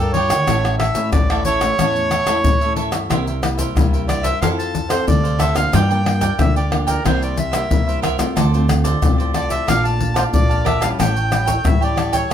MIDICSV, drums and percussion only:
0, 0, Header, 1, 4, 480
1, 0, Start_track
1, 0, Tempo, 657534
1, 347, Time_signature, 4, 2, 24, 8
1, 9005, End_track
2, 0, Start_track
2, 0, Title_t, "Pandeiro"
2, 0, Note_on_c, 9, 54, 31
2, 69, Note_off_c, 9, 54, 0
2, 102, Note_on_c, 9, 54, 59
2, 175, Note_off_c, 9, 54, 0
2, 220, Note_on_c, 9, 54, 68
2, 293, Note_off_c, 9, 54, 0
2, 347, Note_on_c, 9, 54, 75
2, 420, Note_off_c, 9, 54, 0
2, 473, Note_on_c, 9, 54, 33
2, 546, Note_off_c, 9, 54, 0
2, 581, Note_on_c, 9, 54, 57
2, 654, Note_off_c, 9, 54, 0
2, 693, Note_on_c, 9, 54, 65
2, 766, Note_off_c, 9, 54, 0
2, 821, Note_on_c, 9, 54, 83
2, 894, Note_off_c, 9, 54, 0
2, 949, Note_on_c, 9, 54, 34
2, 1022, Note_off_c, 9, 54, 0
2, 1058, Note_on_c, 9, 54, 54
2, 1131, Note_off_c, 9, 54, 0
2, 1176, Note_on_c, 9, 54, 64
2, 1249, Note_off_c, 9, 54, 0
2, 1306, Note_on_c, 9, 54, 74
2, 1379, Note_off_c, 9, 54, 0
2, 1430, Note_on_c, 9, 54, 31
2, 1503, Note_off_c, 9, 54, 0
2, 1540, Note_on_c, 9, 54, 56
2, 1613, Note_off_c, 9, 54, 0
2, 1655, Note_on_c, 9, 54, 70
2, 1728, Note_off_c, 9, 54, 0
2, 1784, Note_on_c, 9, 54, 78
2, 1857, Note_off_c, 9, 54, 0
2, 1908, Note_on_c, 9, 54, 31
2, 1981, Note_off_c, 9, 54, 0
2, 2019, Note_on_c, 9, 54, 52
2, 2092, Note_off_c, 9, 54, 0
2, 2132, Note_on_c, 9, 54, 67
2, 2205, Note_off_c, 9, 54, 0
2, 2267, Note_on_c, 9, 54, 78
2, 2340, Note_off_c, 9, 54, 0
2, 2389, Note_on_c, 9, 54, 32
2, 2462, Note_off_c, 9, 54, 0
2, 2504, Note_on_c, 9, 54, 62
2, 2577, Note_off_c, 9, 54, 0
2, 2618, Note_on_c, 9, 54, 68
2, 2691, Note_off_c, 9, 54, 0
2, 2750, Note_on_c, 9, 54, 79
2, 2823, Note_off_c, 9, 54, 0
2, 2874, Note_on_c, 9, 54, 33
2, 2947, Note_off_c, 9, 54, 0
2, 2986, Note_on_c, 9, 54, 53
2, 3059, Note_off_c, 9, 54, 0
2, 3098, Note_on_c, 9, 54, 66
2, 3171, Note_off_c, 9, 54, 0
2, 3230, Note_on_c, 9, 54, 83
2, 3303, Note_off_c, 9, 54, 0
2, 3355, Note_on_c, 9, 54, 37
2, 3428, Note_off_c, 9, 54, 0
2, 3466, Note_on_c, 9, 54, 58
2, 3539, Note_off_c, 9, 54, 0
2, 3578, Note_on_c, 9, 54, 70
2, 3651, Note_off_c, 9, 54, 0
2, 3708, Note_on_c, 9, 54, 78
2, 3781, Note_off_c, 9, 54, 0
2, 3832, Note_on_c, 9, 54, 33
2, 3905, Note_off_c, 9, 54, 0
2, 3940, Note_on_c, 9, 54, 58
2, 4013, Note_off_c, 9, 54, 0
2, 4056, Note_on_c, 9, 54, 69
2, 4129, Note_off_c, 9, 54, 0
2, 4185, Note_on_c, 9, 54, 87
2, 4258, Note_off_c, 9, 54, 0
2, 4312, Note_on_c, 9, 54, 34
2, 4385, Note_off_c, 9, 54, 0
2, 4426, Note_on_c, 9, 54, 61
2, 4499, Note_off_c, 9, 54, 0
2, 4536, Note_on_c, 9, 54, 76
2, 4609, Note_off_c, 9, 54, 0
2, 4665, Note_on_c, 9, 54, 88
2, 4738, Note_off_c, 9, 54, 0
2, 4791, Note_on_c, 9, 54, 36
2, 4864, Note_off_c, 9, 54, 0
2, 4905, Note_on_c, 9, 54, 56
2, 4978, Note_off_c, 9, 54, 0
2, 5020, Note_on_c, 9, 54, 63
2, 5093, Note_off_c, 9, 54, 0
2, 5150, Note_on_c, 9, 54, 82
2, 5223, Note_off_c, 9, 54, 0
2, 5274, Note_on_c, 9, 54, 37
2, 5347, Note_off_c, 9, 54, 0
2, 5383, Note_on_c, 9, 54, 61
2, 5456, Note_off_c, 9, 54, 0
2, 5498, Note_on_c, 9, 54, 73
2, 5571, Note_off_c, 9, 54, 0
2, 5628, Note_on_c, 9, 54, 82
2, 5701, Note_off_c, 9, 54, 0
2, 5758, Note_on_c, 9, 54, 33
2, 5831, Note_off_c, 9, 54, 0
2, 5865, Note_on_c, 9, 54, 61
2, 5938, Note_off_c, 9, 54, 0
2, 5979, Note_on_c, 9, 54, 74
2, 6052, Note_off_c, 9, 54, 0
2, 6108, Note_on_c, 9, 54, 86
2, 6181, Note_off_c, 9, 54, 0
2, 6234, Note_on_c, 9, 54, 32
2, 6307, Note_off_c, 9, 54, 0
2, 6346, Note_on_c, 9, 54, 61
2, 6419, Note_off_c, 9, 54, 0
2, 6459, Note_on_c, 9, 54, 71
2, 6532, Note_off_c, 9, 54, 0
2, 6588, Note_on_c, 9, 54, 84
2, 6661, Note_off_c, 9, 54, 0
2, 6714, Note_on_c, 9, 54, 35
2, 6787, Note_off_c, 9, 54, 0
2, 6821, Note_on_c, 9, 54, 58
2, 6894, Note_off_c, 9, 54, 0
2, 6937, Note_on_c, 9, 54, 68
2, 7010, Note_off_c, 9, 54, 0
2, 7069, Note_on_c, 9, 54, 82
2, 7142, Note_off_c, 9, 54, 0
2, 7192, Note_on_c, 9, 54, 32
2, 7265, Note_off_c, 9, 54, 0
2, 7303, Note_on_c, 9, 54, 57
2, 7376, Note_off_c, 9, 54, 0
2, 7418, Note_on_c, 9, 54, 71
2, 7491, Note_off_c, 9, 54, 0
2, 7546, Note_on_c, 9, 54, 75
2, 7619, Note_off_c, 9, 54, 0
2, 7671, Note_on_c, 9, 54, 33
2, 7744, Note_off_c, 9, 54, 0
2, 7782, Note_on_c, 9, 54, 65
2, 7855, Note_off_c, 9, 54, 0
2, 7898, Note_on_c, 9, 54, 67
2, 7971, Note_off_c, 9, 54, 0
2, 8028, Note_on_c, 9, 54, 89
2, 8101, Note_off_c, 9, 54, 0
2, 8150, Note_on_c, 9, 54, 35
2, 8223, Note_off_c, 9, 54, 0
2, 8263, Note_on_c, 9, 54, 59
2, 8336, Note_off_c, 9, 54, 0
2, 8377, Note_on_c, 9, 54, 73
2, 8450, Note_off_c, 9, 54, 0
2, 8504, Note_on_c, 9, 54, 80
2, 8577, Note_off_c, 9, 54, 0
2, 8631, Note_on_c, 9, 54, 38
2, 8704, Note_off_c, 9, 54, 0
2, 8742, Note_on_c, 9, 54, 52
2, 8815, Note_off_c, 9, 54, 0
2, 8856, Note_on_c, 9, 54, 66
2, 8929, Note_off_c, 9, 54, 0
2, 9005, End_track
3, 0, Start_track
3, 0, Title_t, "Tamborim"
3, 220, Note_on_c, 9, 60, 80
3, 293, Note_off_c, 9, 60, 0
3, 347, Note_on_c, 9, 60, 81
3, 420, Note_off_c, 9, 60, 0
3, 473, Note_on_c, 9, 60, 76
3, 546, Note_off_c, 9, 60, 0
3, 581, Note_on_c, 9, 60, 88
3, 654, Note_off_c, 9, 60, 0
3, 821, Note_on_c, 9, 60, 77
3, 894, Note_off_c, 9, 60, 0
3, 949, Note_on_c, 9, 60, 87
3, 1022, Note_off_c, 9, 60, 0
3, 1176, Note_on_c, 9, 60, 80
3, 1249, Note_off_c, 9, 60, 0
3, 1306, Note_on_c, 9, 60, 80
3, 1379, Note_off_c, 9, 60, 0
3, 1540, Note_on_c, 9, 60, 79
3, 1613, Note_off_c, 9, 60, 0
3, 1655, Note_on_c, 9, 60, 78
3, 1728, Note_off_c, 9, 60, 0
3, 2132, Note_on_c, 9, 60, 77
3, 2205, Note_off_c, 9, 60, 0
3, 2267, Note_on_c, 9, 60, 85
3, 2340, Note_off_c, 9, 60, 0
3, 2504, Note_on_c, 9, 60, 92
3, 2577, Note_off_c, 9, 60, 0
3, 2750, Note_on_c, 9, 60, 78
3, 2823, Note_off_c, 9, 60, 0
3, 2986, Note_on_c, 9, 60, 75
3, 3059, Note_off_c, 9, 60, 0
3, 3230, Note_on_c, 9, 60, 73
3, 3303, Note_off_c, 9, 60, 0
3, 3578, Note_on_c, 9, 60, 84
3, 3651, Note_off_c, 9, 60, 0
3, 3940, Note_on_c, 9, 60, 83
3, 4013, Note_off_c, 9, 60, 0
3, 4056, Note_on_c, 9, 60, 84
3, 4129, Note_off_c, 9, 60, 0
3, 4185, Note_on_c, 9, 60, 80
3, 4258, Note_off_c, 9, 60, 0
3, 4426, Note_on_c, 9, 60, 83
3, 4499, Note_off_c, 9, 60, 0
3, 4665, Note_on_c, 9, 60, 80
3, 4738, Note_off_c, 9, 60, 0
3, 4905, Note_on_c, 9, 60, 82
3, 4978, Note_off_c, 9, 60, 0
3, 5150, Note_on_c, 9, 60, 82
3, 5223, Note_off_c, 9, 60, 0
3, 5498, Note_on_c, 9, 60, 88
3, 5571, Note_off_c, 9, 60, 0
3, 5865, Note_on_c, 9, 60, 89
3, 5938, Note_off_c, 9, 60, 0
3, 5979, Note_on_c, 9, 60, 85
3, 6052, Note_off_c, 9, 60, 0
3, 6108, Note_on_c, 9, 60, 80
3, 6181, Note_off_c, 9, 60, 0
3, 6346, Note_on_c, 9, 60, 86
3, 6419, Note_off_c, 9, 60, 0
3, 6588, Note_on_c, 9, 60, 79
3, 6661, Note_off_c, 9, 60, 0
3, 6821, Note_on_c, 9, 60, 73
3, 6894, Note_off_c, 9, 60, 0
3, 7069, Note_on_c, 9, 60, 85
3, 7142, Note_off_c, 9, 60, 0
3, 7418, Note_on_c, 9, 60, 90
3, 7491, Note_off_c, 9, 60, 0
3, 7782, Note_on_c, 9, 60, 78
3, 7855, Note_off_c, 9, 60, 0
3, 7898, Note_on_c, 9, 60, 83
3, 7971, Note_off_c, 9, 60, 0
3, 8028, Note_on_c, 9, 60, 89
3, 8101, Note_off_c, 9, 60, 0
3, 8263, Note_on_c, 9, 60, 88
3, 8336, Note_off_c, 9, 60, 0
3, 8504, Note_on_c, 9, 60, 83
3, 8577, Note_off_c, 9, 60, 0
3, 8742, Note_on_c, 9, 60, 83
3, 8815, Note_off_c, 9, 60, 0
3, 9005, End_track
4, 0, Start_track
4, 0, Title_t, "Drums"
4, 0, Note_on_c, 9, 82, 32
4, 69, Note_off_c, 9, 82, 0
4, 220, Note_on_c, 9, 82, 80
4, 293, Note_off_c, 9, 82, 0
4, 347, Note_on_c, 9, 82, 80
4, 347, Note_on_c, 9, 87, 58
4, 420, Note_off_c, 9, 82, 0
4, 420, Note_off_c, 9, 87, 0
4, 473, Note_on_c, 9, 82, 32
4, 546, Note_off_c, 9, 82, 0
4, 693, Note_on_c, 9, 82, 77
4, 766, Note_off_c, 9, 82, 0
4, 821, Note_on_c, 9, 82, 77
4, 821, Note_on_c, 9, 87, 99
4, 894, Note_off_c, 9, 82, 0
4, 894, Note_off_c, 9, 87, 0
4, 949, Note_on_c, 9, 82, 32
4, 1022, Note_off_c, 9, 82, 0
4, 1058, Note_on_c, 9, 82, 60
4, 1131, Note_off_c, 9, 82, 0
4, 1176, Note_on_c, 9, 82, 80
4, 1249, Note_off_c, 9, 82, 0
4, 1306, Note_on_c, 9, 82, 76
4, 1306, Note_on_c, 9, 87, 55
4, 1379, Note_off_c, 9, 82, 0
4, 1379, Note_off_c, 9, 87, 0
4, 1430, Note_on_c, 9, 82, 30
4, 1503, Note_off_c, 9, 82, 0
4, 1540, Note_on_c, 9, 82, 66
4, 1613, Note_off_c, 9, 82, 0
4, 1655, Note_on_c, 9, 82, 82
4, 1728, Note_off_c, 9, 82, 0
4, 1784, Note_on_c, 9, 82, 76
4, 1784, Note_on_c, 9, 87, 93
4, 1857, Note_off_c, 9, 82, 0
4, 1857, Note_off_c, 9, 87, 0
4, 1908, Note_on_c, 9, 82, 34
4, 1981, Note_off_c, 9, 82, 0
4, 2132, Note_on_c, 9, 82, 80
4, 2205, Note_off_c, 9, 82, 0
4, 2267, Note_on_c, 9, 82, 78
4, 2267, Note_on_c, 9, 87, 59
4, 2340, Note_off_c, 9, 82, 0
4, 2340, Note_off_c, 9, 87, 0
4, 2389, Note_on_c, 9, 82, 33
4, 2462, Note_off_c, 9, 82, 0
4, 2504, Note_on_c, 9, 82, 69
4, 2577, Note_off_c, 9, 82, 0
4, 2618, Note_on_c, 9, 82, 87
4, 2618, Note_on_c, 9, 87, 33
4, 2691, Note_off_c, 9, 82, 0
4, 2691, Note_off_c, 9, 87, 0
4, 2750, Note_on_c, 9, 82, 87
4, 2750, Note_on_c, 9, 87, 103
4, 2823, Note_off_c, 9, 82, 0
4, 2823, Note_off_c, 9, 87, 0
4, 2874, Note_on_c, 9, 82, 35
4, 2947, Note_off_c, 9, 82, 0
4, 2986, Note_on_c, 9, 82, 63
4, 3059, Note_off_c, 9, 82, 0
4, 3098, Note_on_c, 9, 82, 76
4, 3098, Note_on_c, 9, 87, 34
4, 3171, Note_off_c, 9, 82, 0
4, 3171, Note_off_c, 9, 87, 0
4, 3230, Note_on_c, 9, 82, 81
4, 3230, Note_on_c, 9, 87, 58
4, 3303, Note_off_c, 9, 82, 0
4, 3303, Note_off_c, 9, 87, 0
4, 3355, Note_on_c, 9, 82, 36
4, 3428, Note_off_c, 9, 82, 0
4, 3466, Note_on_c, 9, 82, 68
4, 3466, Note_on_c, 9, 87, 36
4, 3539, Note_off_c, 9, 82, 0
4, 3539, Note_off_c, 9, 87, 0
4, 3578, Note_on_c, 9, 82, 87
4, 3651, Note_off_c, 9, 82, 0
4, 3708, Note_on_c, 9, 82, 77
4, 3708, Note_on_c, 9, 87, 90
4, 3781, Note_off_c, 9, 82, 0
4, 3781, Note_off_c, 9, 87, 0
4, 3832, Note_on_c, 9, 82, 33
4, 3905, Note_off_c, 9, 82, 0
4, 3940, Note_on_c, 9, 82, 74
4, 3940, Note_on_c, 9, 87, 33
4, 4013, Note_off_c, 9, 82, 0
4, 4013, Note_off_c, 9, 87, 0
4, 4056, Note_on_c, 9, 82, 80
4, 4056, Note_on_c, 9, 87, 34
4, 4129, Note_off_c, 9, 82, 0
4, 4129, Note_off_c, 9, 87, 0
4, 4185, Note_on_c, 9, 82, 86
4, 4185, Note_on_c, 9, 87, 63
4, 4258, Note_off_c, 9, 82, 0
4, 4258, Note_off_c, 9, 87, 0
4, 4312, Note_on_c, 9, 82, 30
4, 4385, Note_off_c, 9, 82, 0
4, 4536, Note_on_c, 9, 82, 80
4, 4536, Note_on_c, 9, 87, 35
4, 4609, Note_off_c, 9, 82, 0
4, 4609, Note_off_c, 9, 87, 0
4, 4665, Note_on_c, 9, 82, 79
4, 4665, Note_on_c, 9, 87, 99
4, 4738, Note_off_c, 9, 82, 0
4, 4738, Note_off_c, 9, 87, 0
4, 4791, Note_on_c, 9, 82, 35
4, 4864, Note_off_c, 9, 82, 0
4, 5020, Note_on_c, 9, 82, 76
4, 5020, Note_on_c, 9, 87, 35
4, 5093, Note_off_c, 9, 82, 0
4, 5093, Note_off_c, 9, 87, 0
4, 5150, Note_on_c, 9, 82, 81
4, 5150, Note_on_c, 9, 87, 64
4, 5223, Note_off_c, 9, 82, 0
4, 5223, Note_off_c, 9, 87, 0
4, 5274, Note_on_c, 9, 82, 35
4, 5347, Note_off_c, 9, 82, 0
4, 5383, Note_on_c, 9, 82, 65
4, 5383, Note_on_c, 9, 87, 37
4, 5456, Note_off_c, 9, 82, 0
4, 5456, Note_off_c, 9, 87, 0
4, 5498, Note_on_c, 9, 82, 82
4, 5571, Note_off_c, 9, 82, 0
4, 5628, Note_on_c, 9, 82, 75
4, 5628, Note_on_c, 9, 87, 90
4, 5701, Note_off_c, 9, 82, 0
4, 5701, Note_off_c, 9, 87, 0
4, 5758, Note_on_c, 9, 82, 32
4, 5831, Note_off_c, 9, 82, 0
4, 5865, Note_on_c, 9, 82, 74
4, 5865, Note_on_c, 9, 87, 31
4, 5938, Note_off_c, 9, 82, 0
4, 5938, Note_off_c, 9, 87, 0
4, 5979, Note_on_c, 9, 82, 87
4, 5979, Note_on_c, 9, 87, 36
4, 6052, Note_off_c, 9, 82, 0
4, 6052, Note_off_c, 9, 87, 0
4, 6108, Note_on_c, 9, 82, 83
4, 6108, Note_on_c, 9, 87, 59
4, 6181, Note_off_c, 9, 82, 0
4, 6181, Note_off_c, 9, 87, 0
4, 6234, Note_on_c, 9, 82, 31
4, 6307, Note_off_c, 9, 82, 0
4, 6346, Note_on_c, 9, 82, 81
4, 6419, Note_off_c, 9, 82, 0
4, 6459, Note_on_c, 9, 82, 77
4, 6459, Note_on_c, 9, 87, 37
4, 6532, Note_off_c, 9, 82, 0
4, 6532, Note_off_c, 9, 87, 0
4, 6588, Note_on_c, 9, 82, 84
4, 6588, Note_on_c, 9, 87, 110
4, 6661, Note_off_c, 9, 82, 0
4, 6661, Note_off_c, 9, 87, 0
4, 6714, Note_on_c, 9, 82, 38
4, 6787, Note_off_c, 9, 82, 0
4, 6821, Note_on_c, 9, 82, 65
4, 6894, Note_off_c, 9, 82, 0
4, 6937, Note_on_c, 9, 82, 84
4, 6937, Note_on_c, 9, 87, 34
4, 7010, Note_off_c, 9, 82, 0
4, 7010, Note_off_c, 9, 87, 0
4, 7069, Note_on_c, 9, 82, 83
4, 7069, Note_on_c, 9, 87, 57
4, 7142, Note_off_c, 9, 82, 0
4, 7142, Note_off_c, 9, 87, 0
4, 7192, Note_on_c, 9, 82, 33
4, 7265, Note_off_c, 9, 82, 0
4, 7303, Note_on_c, 9, 87, 35
4, 7376, Note_off_c, 9, 87, 0
4, 7418, Note_on_c, 9, 82, 84
4, 7491, Note_off_c, 9, 82, 0
4, 7546, Note_on_c, 9, 82, 77
4, 7546, Note_on_c, 9, 87, 102
4, 7619, Note_off_c, 9, 82, 0
4, 7619, Note_off_c, 9, 87, 0
4, 7671, Note_on_c, 9, 82, 35
4, 7744, Note_off_c, 9, 82, 0
4, 7782, Note_on_c, 9, 87, 31
4, 7855, Note_off_c, 9, 87, 0
4, 7898, Note_on_c, 9, 82, 86
4, 7898, Note_on_c, 9, 87, 35
4, 7971, Note_off_c, 9, 82, 0
4, 7971, Note_off_c, 9, 87, 0
4, 8028, Note_on_c, 9, 82, 85
4, 8028, Note_on_c, 9, 87, 60
4, 8101, Note_off_c, 9, 82, 0
4, 8101, Note_off_c, 9, 87, 0
4, 8150, Note_on_c, 9, 82, 33
4, 8223, Note_off_c, 9, 82, 0
4, 8263, Note_on_c, 9, 82, 75
4, 8336, Note_off_c, 9, 82, 0
4, 8377, Note_on_c, 9, 82, 93
4, 8377, Note_on_c, 9, 87, 36
4, 8450, Note_off_c, 9, 82, 0
4, 8450, Note_off_c, 9, 87, 0
4, 8504, Note_on_c, 9, 82, 89
4, 8504, Note_on_c, 9, 87, 110
4, 8577, Note_off_c, 9, 82, 0
4, 8577, Note_off_c, 9, 87, 0
4, 8631, Note_on_c, 9, 82, 35
4, 8704, Note_off_c, 9, 82, 0
4, 8742, Note_on_c, 9, 82, 64
4, 8815, Note_off_c, 9, 82, 0
4, 8856, Note_on_c, 9, 82, 82
4, 8856, Note_on_c, 9, 87, 33
4, 8929, Note_off_c, 9, 82, 0
4, 8929, Note_off_c, 9, 87, 0
4, 9005, End_track
0, 0, End_of_file